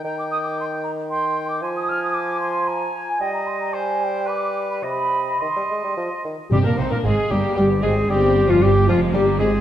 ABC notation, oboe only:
X:1
M:3/4
L:1/16
Q:1/4=114
K:Cm
V:1 name="Oboe"
g8 g4 | a8 a4 | e4 c4 =B4 | e4 e6 z2 |
G B c B A2 G2 G2 A2 | G3 F G2 F2 G2 A2 |]